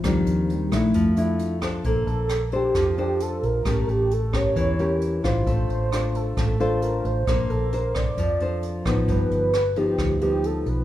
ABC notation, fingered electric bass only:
X:1
M:4/4
L:1/8
Q:1/4=133
K:F
V:1 name="Fingered electric bass" clef=bass
_E,, E,,2 B,,, F,,4 | [K:Bb] B,,, B,,,3 F,,3 B,,, | A,,, A,,,3 =E,,3 A,,, | A,,, A,,,3 A,,,3 A,,, |
B,,, B,,,3 F,,3 A,,, | G,,, G,,,3 D,,3 =B,,, |]